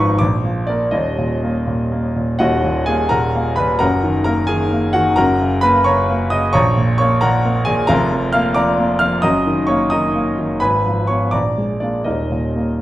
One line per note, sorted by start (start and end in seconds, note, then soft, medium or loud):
0.00 0.18 G#1 medium
0.00 0.19 G#2 medium
0.00 0.11 F3 medium
0.00 0.18 D#4 medium
0.00 0.19 B4 medium
0.00 0.24 B5 loud
0.00 0.20 C#6 loud
0.19 0.92 A#1 medium
0.19 0.68 D6 loud
0.45 0.84 F3 medium
0.67 0.91 A#3 medium
0.67 0.91 A#4 medium
0.67 0.92 D5 medium
0.91 2.36 D#1 medium
0.91 2.37 D#2 medium
0.91 1.66 D#5 medium
1.18 1.58 A#2 medium
1.43 1.82 A#3 medium
1.67 2.06 A#2 medium
1.92 2.31 A#3 medium
2.16 2.41 A#2 medium
2.39 3.77 D#1 medium
2.39 3.77 D#2 medium
2.39 2.85 F#4 medium
2.39 2.85 D#5 medium
2.39 2.88 F#5 loud
2.65 3.03 A#2 medium
2.86 3.26 A#3 medium
2.86 3.10 G#4 medium
2.86 3.11 G#5 loud
3.09 3.49 A#2 medium
3.09 3.54 A#4 medium
3.09 3.54 F#5 medium
3.09 3.57 A#5 loud
3.35 3.72 A#3 medium
3.56 3.81 A#2 medium
3.56 3.79 B4 medium
3.56 3.80 B5 loud
3.79 5.14 F#1 medium
3.79 5.14 F#2 medium
3.79 4.23 A#4 medium
3.79 4.23 F#5 medium
3.79 4.23 A#5 loud
4.03 4.40 D#3 medium
4.24 4.63 A#3 medium
4.24 4.47 A#4 medium
4.24 4.48 A#5 loud
4.47 4.86 D#3 medium
4.47 4.91 G#4 medium
4.47 4.94 G#5 loud
4.72 5.09 A#3 medium
4.93 5.18 D#3 medium
4.93 5.16 F#4 medium
4.93 5.16 F#5 loud
5.16 6.51 F#1 medium
5.16 6.51 F#2 medium
5.16 5.60 A#4 medium
5.16 5.60 F#5 medium
5.16 5.63 A#5 loud
5.40 5.77 C#3 medium
5.61 6.01 A#3 medium
5.61 5.85 B4 medium
5.61 5.86 B5 loud
5.84 6.23 C#3 medium
5.84 6.29 C#5 medium
5.84 6.29 A#5 medium
5.84 6.31 C#6 loud
6.10 6.46 A#3 medium
6.30 6.55 C#3 medium
6.30 6.53 D#5 medium
6.30 6.54 D#6 loud
6.53 7.85 A#1 loud
6.53 6.96 C#5 medium
6.53 6.96 A#5 medium
6.53 6.96 C#6 loud
6.77 7.14 A#2 medium
6.98 7.37 A#3 medium
6.98 7.21 C#5 medium
6.98 7.22 C#6 loud
7.21 7.59 A#2 medium
7.21 7.64 A#4 medium
7.21 7.64 F#5 medium
7.21 7.66 A#5 loud
7.45 7.81 A#3 medium
7.65 7.90 A#2 medium
7.65 7.87 G#4 medium
7.65 7.88 G#5 loud
7.87 9.20 F1 medium
7.87 9.20 F2 medium
7.87 8.31 A#4 medium
7.87 8.31 F5 medium
7.87 8.33 A#5 loud
8.12 8.48 F3 medium
8.33 8.71 A#3 medium
8.33 8.55 F5 medium
8.33 8.56 F6 loud
8.54 8.93 F3 medium
8.54 8.98 D5 medium
8.54 8.98 A#5 medium
8.54 9.00 D6 loud
8.79 9.15 A#3 medium
8.99 9.24 F3 medium
8.99 9.22 F5 medium
8.99 9.23 F6 loud
9.22 10.58 F#1 medium
9.22 10.58 F#2 medium
9.22 9.66 D#5 medium
9.22 9.66 A#5 medium
9.22 9.69 D#6 loud
9.47 9.83 D#3 medium
9.67 10.06 A#3 medium
9.67 9.90 C#5 medium
9.67 9.91 C#6 loud
9.90 10.29 D#3 medium
9.90 10.58 D#5 medium
9.90 10.58 A#5 medium
9.90 10.61 D#6 loud
10.15 10.53 A#3 medium
10.39 10.62 D#3 medium
10.60 11.32 G#1 medium
10.60 11.06 B4 medium
10.60 11.06 G#5 medium
10.60 11.09 B5 loud
10.86 11.25 F3 medium
11.07 11.32 B3 medium
11.07 11.32 F4 medium
11.07 11.32 C#5 medium
11.07 11.33 C#6 medium
11.31 12.05 A#1 medium
11.31 11.78 D5 medium
11.31 11.78 A#5 medium
11.31 11.81 D6 medium
11.58 11.97 G#3 medium
11.80 12.05 A#3 soft
11.80 12.05 D4 medium
11.80 12.05 F4 medium
11.80 12.06 D5 medium
12.04 12.82 D#1 medium
12.04 12.82 D#2 medium
12.04 12.76 D#4 soft
12.04 12.76 A#4 medium
12.04 12.80 D#5 medium
12.32 12.71 A#2 soft
12.56 12.82 A#3 soft